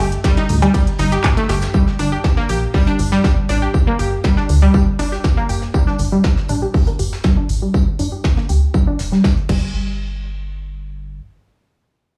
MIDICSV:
0, 0, Header, 1, 4, 480
1, 0, Start_track
1, 0, Key_signature, -2, "minor"
1, 0, Tempo, 500000
1, 1672, Time_signature, 4, 2, 24, 8
1, 11690, End_track
2, 0, Start_track
2, 0, Title_t, "Synth pluck"
2, 0, Program_c, 0, 84
2, 232, Note_on_c, 0, 55, 111
2, 264, Note_off_c, 0, 55, 0
2, 357, Note_on_c, 0, 63, 100
2, 387, Note_off_c, 0, 63, 0
2, 596, Note_on_c, 0, 55, 102
2, 646, Note_off_c, 0, 55, 0
2, 712, Note_on_c, 0, 55, 89
2, 766, Note_off_c, 0, 55, 0
2, 952, Note_on_c, 0, 63, 103
2, 1006, Note_off_c, 0, 63, 0
2, 1076, Note_on_c, 0, 67, 82
2, 1151, Note_off_c, 0, 67, 0
2, 1316, Note_on_c, 0, 57, 110
2, 1346, Note_off_c, 0, 57, 0
2, 1432, Note_on_c, 0, 67, 78
2, 1486, Note_off_c, 0, 67, 0
2, 1672, Note_on_c, 0, 55, 81
2, 1726, Note_off_c, 0, 55, 0
2, 1912, Note_on_c, 0, 62, 100
2, 1966, Note_off_c, 0, 62, 0
2, 2037, Note_on_c, 0, 67, 75
2, 2112, Note_off_c, 0, 67, 0
2, 2276, Note_on_c, 0, 58, 98
2, 2306, Note_off_c, 0, 58, 0
2, 2392, Note_on_c, 0, 67, 78
2, 2446, Note_off_c, 0, 67, 0
2, 2632, Note_on_c, 0, 55, 107
2, 2664, Note_off_c, 0, 55, 0
2, 2756, Note_on_c, 0, 62, 101
2, 2786, Note_off_c, 0, 62, 0
2, 2996, Note_on_c, 0, 55, 106
2, 3046, Note_off_c, 0, 55, 0
2, 3112, Note_on_c, 0, 55, 83
2, 3166, Note_off_c, 0, 55, 0
2, 3352, Note_on_c, 0, 62, 104
2, 3406, Note_off_c, 0, 62, 0
2, 3476, Note_on_c, 0, 67, 80
2, 3551, Note_off_c, 0, 67, 0
2, 3716, Note_on_c, 0, 58, 104
2, 3746, Note_off_c, 0, 58, 0
2, 3832, Note_on_c, 0, 67, 75
2, 3886, Note_off_c, 0, 67, 0
2, 4072, Note_on_c, 0, 55, 106
2, 4104, Note_off_c, 0, 55, 0
2, 4196, Note_on_c, 0, 62, 98
2, 4226, Note_off_c, 0, 62, 0
2, 4437, Note_on_c, 0, 55, 100
2, 4487, Note_off_c, 0, 55, 0
2, 4552, Note_on_c, 0, 55, 84
2, 4606, Note_off_c, 0, 55, 0
2, 4792, Note_on_c, 0, 62, 99
2, 4846, Note_off_c, 0, 62, 0
2, 4917, Note_on_c, 0, 67, 81
2, 4992, Note_off_c, 0, 67, 0
2, 5157, Note_on_c, 0, 58, 107
2, 5187, Note_off_c, 0, 58, 0
2, 5272, Note_on_c, 0, 67, 76
2, 5326, Note_off_c, 0, 67, 0
2, 5512, Note_on_c, 0, 55, 100
2, 5544, Note_off_c, 0, 55, 0
2, 5636, Note_on_c, 0, 62, 106
2, 5666, Note_off_c, 0, 62, 0
2, 5876, Note_on_c, 0, 55, 98
2, 5926, Note_off_c, 0, 55, 0
2, 5992, Note_on_c, 0, 55, 83
2, 6046, Note_off_c, 0, 55, 0
2, 6232, Note_on_c, 0, 62, 103
2, 6286, Note_off_c, 0, 62, 0
2, 6357, Note_on_c, 0, 67, 77
2, 6432, Note_off_c, 0, 67, 0
2, 6596, Note_on_c, 0, 58, 98
2, 6626, Note_off_c, 0, 58, 0
2, 6712, Note_on_c, 0, 67, 74
2, 6766, Note_off_c, 0, 67, 0
2, 6952, Note_on_c, 0, 55, 99
2, 6984, Note_off_c, 0, 55, 0
2, 7077, Note_on_c, 0, 62, 101
2, 7107, Note_off_c, 0, 62, 0
2, 7316, Note_on_c, 0, 55, 98
2, 7366, Note_off_c, 0, 55, 0
2, 7432, Note_on_c, 0, 55, 84
2, 7486, Note_off_c, 0, 55, 0
2, 7672, Note_on_c, 0, 62, 98
2, 7726, Note_off_c, 0, 62, 0
2, 7796, Note_on_c, 0, 67, 75
2, 7871, Note_off_c, 0, 67, 0
2, 8036, Note_on_c, 0, 58, 98
2, 8066, Note_off_c, 0, 58, 0
2, 8152, Note_on_c, 0, 67, 77
2, 8206, Note_off_c, 0, 67, 0
2, 8392, Note_on_c, 0, 55, 104
2, 8424, Note_off_c, 0, 55, 0
2, 8517, Note_on_c, 0, 62, 106
2, 8547, Note_off_c, 0, 62, 0
2, 8756, Note_on_c, 0, 55, 99
2, 8806, Note_off_c, 0, 55, 0
2, 8872, Note_on_c, 0, 55, 81
2, 8926, Note_off_c, 0, 55, 0
2, 9112, Note_on_c, 0, 55, 93
2, 9559, Note_off_c, 0, 55, 0
2, 11690, End_track
3, 0, Start_track
3, 0, Title_t, "Analog synth bass"
3, 0, Program_c, 1, 38
3, 0, Note_on_c, 1, 31, 87
3, 165, Note_off_c, 1, 31, 0
3, 472, Note_on_c, 1, 38, 92
3, 645, Note_off_c, 1, 38, 0
3, 952, Note_on_c, 1, 31, 102
3, 1125, Note_off_c, 1, 31, 0
3, 1432, Note_on_c, 1, 31, 101
3, 1605, Note_off_c, 1, 31, 0
3, 1912, Note_on_c, 1, 31, 101
3, 2085, Note_off_c, 1, 31, 0
3, 2392, Note_on_c, 1, 34, 88
3, 2565, Note_off_c, 1, 34, 0
3, 2872, Note_on_c, 1, 31, 81
3, 3045, Note_off_c, 1, 31, 0
3, 3352, Note_on_c, 1, 33, 94
3, 3525, Note_off_c, 1, 33, 0
3, 3832, Note_on_c, 1, 31, 81
3, 4005, Note_off_c, 1, 31, 0
3, 4312, Note_on_c, 1, 38, 94
3, 4485, Note_off_c, 1, 38, 0
3, 4792, Note_on_c, 1, 31, 88
3, 4965, Note_off_c, 1, 31, 0
3, 5272, Note_on_c, 1, 31, 80
3, 5445, Note_off_c, 1, 31, 0
3, 5752, Note_on_c, 1, 31, 104
3, 5925, Note_off_c, 1, 31, 0
3, 6232, Note_on_c, 1, 34, 88
3, 6405, Note_off_c, 1, 34, 0
3, 6713, Note_on_c, 1, 31, 82
3, 6885, Note_off_c, 1, 31, 0
3, 7192, Note_on_c, 1, 33, 91
3, 7365, Note_off_c, 1, 33, 0
3, 7672, Note_on_c, 1, 31, 82
3, 7845, Note_off_c, 1, 31, 0
3, 8152, Note_on_c, 1, 38, 90
3, 8325, Note_off_c, 1, 38, 0
3, 8632, Note_on_c, 1, 29, 82
3, 8805, Note_off_c, 1, 29, 0
3, 9112, Note_on_c, 1, 31, 90
3, 10753, Note_off_c, 1, 31, 0
3, 11690, End_track
4, 0, Start_track
4, 0, Title_t, "Drums"
4, 117, Note_on_c, 9, 42, 50
4, 213, Note_off_c, 9, 42, 0
4, 232, Note_on_c, 9, 36, 122
4, 232, Note_on_c, 9, 42, 73
4, 232, Note_on_c, 9, 51, 67
4, 233, Note_on_c, 9, 38, 110
4, 241, Note_on_c, 9, 54, 85
4, 328, Note_off_c, 9, 36, 0
4, 328, Note_off_c, 9, 42, 0
4, 328, Note_off_c, 9, 51, 0
4, 329, Note_off_c, 9, 38, 0
4, 337, Note_off_c, 9, 54, 0
4, 357, Note_on_c, 9, 42, 45
4, 358, Note_on_c, 9, 38, 39
4, 453, Note_off_c, 9, 42, 0
4, 454, Note_off_c, 9, 38, 0
4, 471, Note_on_c, 9, 54, 79
4, 472, Note_on_c, 9, 45, 98
4, 472, Note_on_c, 9, 46, 105
4, 567, Note_off_c, 9, 54, 0
4, 568, Note_off_c, 9, 45, 0
4, 568, Note_off_c, 9, 46, 0
4, 597, Note_on_c, 9, 42, 49
4, 597, Note_on_c, 9, 77, 54
4, 693, Note_off_c, 9, 42, 0
4, 693, Note_off_c, 9, 77, 0
4, 712, Note_on_c, 9, 36, 118
4, 713, Note_on_c, 9, 42, 70
4, 713, Note_on_c, 9, 51, 67
4, 713, Note_on_c, 9, 54, 83
4, 808, Note_off_c, 9, 36, 0
4, 809, Note_off_c, 9, 42, 0
4, 809, Note_off_c, 9, 51, 0
4, 809, Note_off_c, 9, 54, 0
4, 837, Note_on_c, 9, 42, 50
4, 933, Note_off_c, 9, 42, 0
4, 945, Note_on_c, 9, 54, 64
4, 946, Note_on_c, 9, 38, 55
4, 952, Note_on_c, 9, 46, 104
4, 1041, Note_off_c, 9, 54, 0
4, 1042, Note_off_c, 9, 38, 0
4, 1048, Note_off_c, 9, 46, 0
4, 1072, Note_on_c, 9, 38, 49
4, 1077, Note_on_c, 9, 42, 49
4, 1168, Note_off_c, 9, 38, 0
4, 1173, Note_off_c, 9, 42, 0
4, 1187, Note_on_c, 9, 38, 122
4, 1192, Note_on_c, 9, 36, 117
4, 1193, Note_on_c, 9, 39, 127
4, 1193, Note_on_c, 9, 42, 74
4, 1193, Note_on_c, 9, 45, 97
4, 1193, Note_on_c, 9, 51, 69
4, 1193, Note_on_c, 9, 54, 97
4, 1193, Note_on_c, 9, 77, 53
4, 1283, Note_off_c, 9, 38, 0
4, 1288, Note_off_c, 9, 36, 0
4, 1289, Note_off_c, 9, 39, 0
4, 1289, Note_off_c, 9, 42, 0
4, 1289, Note_off_c, 9, 45, 0
4, 1289, Note_off_c, 9, 51, 0
4, 1289, Note_off_c, 9, 54, 0
4, 1289, Note_off_c, 9, 77, 0
4, 1317, Note_on_c, 9, 42, 49
4, 1321, Note_off_c, 9, 42, 0
4, 1321, Note_on_c, 9, 42, 43
4, 1417, Note_off_c, 9, 42, 0
4, 1431, Note_on_c, 9, 54, 73
4, 1432, Note_on_c, 9, 46, 98
4, 1433, Note_on_c, 9, 38, 118
4, 1527, Note_off_c, 9, 54, 0
4, 1528, Note_off_c, 9, 46, 0
4, 1529, Note_off_c, 9, 38, 0
4, 1551, Note_on_c, 9, 54, 87
4, 1557, Note_on_c, 9, 42, 48
4, 1560, Note_on_c, 9, 38, 99
4, 1647, Note_off_c, 9, 54, 0
4, 1653, Note_off_c, 9, 42, 0
4, 1656, Note_off_c, 9, 38, 0
4, 1669, Note_on_c, 9, 54, 91
4, 1672, Note_on_c, 9, 36, 119
4, 1765, Note_off_c, 9, 54, 0
4, 1768, Note_off_c, 9, 36, 0
4, 1799, Note_on_c, 9, 38, 41
4, 1895, Note_off_c, 9, 38, 0
4, 1909, Note_on_c, 9, 54, 69
4, 1913, Note_on_c, 9, 46, 103
4, 2005, Note_off_c, 9, 54, 0
4, 2009, Note_off_c, 9, 46, 0
4, 2151, Note_on_c, 9, 38, 113
4, 2152, Note_on_c, 9, 36, 115
4, 2156, Note_on_c, 9, 54, 82
4, 2247, Note_off_c, 9, 38, 0
4, 2248, Note_off_c, 9, 36, 0
4, 2252, Note_off_c, 9, 54, 0
4, 2275, Note_on_c, 9, 38, 43
4, 2371, Note_off_c, 9, 38, 0
4, 2389, Note_on_c, 9, 54, 74
4, 2393, Note_on_c, 9, 46, 107
4, 2485, Note_off_c, 9, 54, 0
4, 2489, Note_off_c, 9, 46, 0
4, 2628, Note_on_c, 9, 46, 78
4, 2632, Note_on_c, 9, 36, 116
4, 2724, Note_off_c, 9, 46, 0
4, 2728, Note_off_c, 9, 36, 0
4, 2756, Note_on_c, 9, 42, 44
4, 2852, Note_off_c, 9, 42, 0
4, 2866, Note_on_c, 9, 54, 64
4, 2872, Note_on_c, 9, 46, 108
4, 2962, Note_off_c, 9, 54, 0
4, 2968, Note_off_c, 9, 46, 0
4, 2995, Note_on_c, 9, 38, 48
4, 3091, Note_off_c, 9, 38, 0
4, 3112, Note_on_c, 9, 36, 121
4, 3113, Note_on_c, 9, 38, 116
4, 3114, Note_on_c, 9, 54, 82
4, 3208, Note_off_c, 9, 36, 0
4, 3209, Note_off_c, 9, 38, 0
4, 3210, Note_off_c, 9, 54, 0
4, 3348, Note_on_c, 9, 54, 70
4, 3352, Note_on_c, 9, 46, 98
4, 3444, Note_off_c, 9, 54, 0
4, 3448, Note_off_c, 9, 46, 0
4, 3592, Note_on_c, 9, 36, 116
4, 3595, Note_on_c, 9, 54, 88
4, 3688, Note_off_c, 9, 36, 0
4, 3691, Note_off_c, 9, 54, 0
4, 3832, Note_on_c, 9, 46, 102
4, 3836, Note_on_c, 9, 54, 66
4, 3928, Note_off_c, 9, 46, 0
4, 3932, Note_off_c, 9, 54, 0
4, 4069, Note_on_c, 9, 54, 91
4, 4072, Note_on_c, 9, 36, 123
4, 4074, Note_on_c, 9, 38, 122
4, 4165, Note_off_c, 9, 54, 0
4, 4168, Note_off_c, 9, 36, 0
4, 4170, Note_off_c, 9, 38, 0
4, 4194, Note_on_c, 9, 38, 51
4, 4290, Note_off_c, 9, 38, 0
4, 4312, Note_on_c, 9, 46, 111
4, 4314, Note_on_c, 9, 54, 75
4, 4408, Note_off_c, 9, 46, 0
4, 4410, Note_off_c, 9, 54, 0
4, 4550, Note_on_c, 9, 54, 88
4, 4552, Note_on_c, 9, 36, 117
4, 4646, Note_off_c, 9, 54, 0
4, 4648, Note_off_c, 9, 36, 0
4, 4789, Note_on_c, 9, 54, 62
4, 4792, Note_on_c, 9, 46, 113
4, 4794, Note_on_c, 9, 38, 50
4, 4885, Note_off_c, 9, 54, 0
4, 4888, Note_off_c, 9, 46, 0
4, 4890, Note_off_c, 9, 38, 0
4, 4921, Note_on_c, 9, 38, 41
4, 5017, Note_off_c, 9, 38, 0
4, 5030, Note_on_c, 9, 54, 93
4, 5032, Note_on_c, 9, 36, 123
4, 5032, Note_on_c, 9, 38, 118
4, 5126, Note_off_c, 9, 54, 0
4, 5128, Note_off_c, 9, 36, 0
4, 5128, Note_off_c, 9, 38, 0
4, 5156, Note_on_c, 9, 42, 38
4, 5252, Note_off_c, 9, 42, 0
4, 5272, Note_on_c, 9, 46, 105
4, 5274, Note_on_c, 9, 54, 67
4, 5368, Note_off_c, 9, 46, 0
4, 5370, Note_off_c, 9, 54, 0
4, 5393, Note_on_c, 9, 38, 38
4, 5489, Note_off_c, 9, 38, 0
4, 5512, Note_on_c, 9, 36, 120
4, 5512, Note_on_c, 9, 54, 96
4, 5608, Note_off_c, 9, 36, 0
4, 5608, Note_off_c, 9, 54, 0
4, 5638, Note_on_c, 9, 38, 33
4, 5734, Note_off_c, 9, 38, 0
4, 5744, Note_on_c, 9, 54, 65
4, 5752, Note_on_c, 9, 46, 113
4, 5840, Note_off_c, 9, 54, 0
4, 5848, Note_off_c, 9, 46, 0
4, 5988, Note_on_c, 9, 38, 110
4, 5988, Note_on_c, 9, 54, 84
4, 5992, Note_on_c, 9, 36, 115
4, 6084, Note_off_c, 9, 38, 0
4, 6084, Note_off_c, 9, 54, 0
4, 6088, Note_off_c, 9, 36, 0
4, 6118, Note_on_c, 9, 38, 46
4, 6214, Note_off_c, 9, 38, 0
4, 6224, Note_on_c, 9, 54, 69
4, 6232, Note_on_c, 9, 46, 112
4, 6320, Note_off_c, 9, 54, 0
4, 6328, Note_off_c, 9, 46, 0
4, 6470, Note_on_c, 9, 46, 80
4, 6472, Note_on_c, 9, 36, 121
4, 6566, Note_off_c, 9, 46, 0
4, 6568, Note_off_c, 9, 36, 0
4, 6594, Note_on_c, 9, 42, 47
4, 6690, Note_off_c, 9, 42, 0
4, 6710, Note_on_c, 9, 54, 62
4, 6712, Note_on_c, 9, 46, 113
4, 6806, Note_off_c, 9, 54, 0
4, 6808, Note_off_c, 9, 46, 0
4, 6841, Note_on_c, 9, 38, 56
4, 6937, Note_off_c, 9, 38, 0
4, 6946, Note_on_c, 9, 54, 77
4, 6948, Note_on_c, 9, 38, 105
4, 6952, Note_on_c, 9, 36, 123
4, 7042, Note_off_c, 9, 54, 0
4, 7044, Note_off_c, 9, 38, 0
4, 7048, Note_off_c, 9, 36, 0
4, 7193, Note_on_c, 9, 46, 102
4, 7194, Note_on_c, 9, 54, 73
4, 7289, Note_off_c, 9, 46, 0
4, 7290, Note_off_c, 9, 54, 0
4, 7432, Note_on_c, 9, 36, 117
4, 7435, Note_on_c, 9, 54, 81
4, 7528, Note_off_c, 9, 36, 0
4, 7531, Note_off_c, 9, 54, 0
4, 7672, Note_on_c, 9, 46, 105
4, 7675, Note_on_c, 9, 54, 71
4, 7768, Note_off_c, 9, 46, 0
4, 7771, Note_off_c, 9, 54, 0
4, 7909, Note_on_c, 9, 54, 85
4, 7912, Note_on_c, 9, 36, 116
4, 7916, Note_on_c, 9, 38, 115
4, 8005, Note_off_c, 9, 54, 0
4, 8008, Note_off_c, 9, 36, 0
4, 8012, Note_off_c, 9, 38, 0
4, 8037, Note_on_c, 9, 38, 46
4, 8133, Note_off_c, 9, 38, 0
4, 8152, Note_on_c, 9, 46, 112
4, 8156, Note_on_c, 9, 54, 75
4, 8248, Note_off_c, 9, 46, 0
4, 8252, Note_off_c, 9, 54, 0
4, 8392, Note_on_c, 9, 36, 117
4, 8393, Note_on_c, 9, 54, 86
4, 8488, Note_off_c, 9, 36, 0
4, 8489, Note_off_c, 9, 54, 0
4, 8630, Note_on_c, 9, 38, 52
4, 8632, Note_on_c, 9, 46, 110
4, 8634, Note_on_c, 9, 54, 60
4, 8726, Note_off_c, 9, 38, 0
4, 8728, Note_off_c, 9, 46, 0
4, 8730, Note_off_c, 9, 54, 0
4, 8764, Note_on_c, 9, 38, 41
4, 8860, Note_off_c, 9, 38, 0
4, 8872, Note_on_c, 9, 36, 119
4, 8874, Note_on_c, 9, 38, 119
4, 8875, Note_on_c, 9, 54, 90
4, 8968, Note_off_c, 9, 36, 0
4, 8970, Note_off_c, 9, 38, 0
4, 8971, Note_off_c, 9, 54, 0
4, 8995, Note_on_c, 9, 42, 36
4, 9091, Note_off_c, 9, 42, 0
4, 9112, Note_on_c, 9, 36, 113
4, 9112, Note_on_c, 9, 49, 82
4, 9208, Note_off_c, 9, 36, 0
4, 9208, Note_off_c, 9, 49, 0
4, 11690, End_track
0, 0, End_of_file